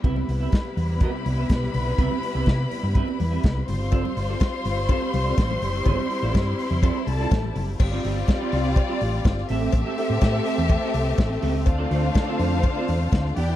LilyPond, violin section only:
\new Staff \with { instrumentName = "Violin section" } { \time 4/4 \key g \mixolydian \tempo 4 = 124 <b' b''>1~ | <b' b''>2.~ <b' b''>8 <c'' c'''>8~ | <c'' c'''>1~ | <c'' c'''>2~ <c'' c'''>8 <a' a''>4 r8 |
<g f' d''>2.~ <g f' d''>8 <c' a' e''>8~ | <c' a' e''>1 | <d' c'' f''>2.~ <d' c'' f''>8 <e' d'' g''>8 | }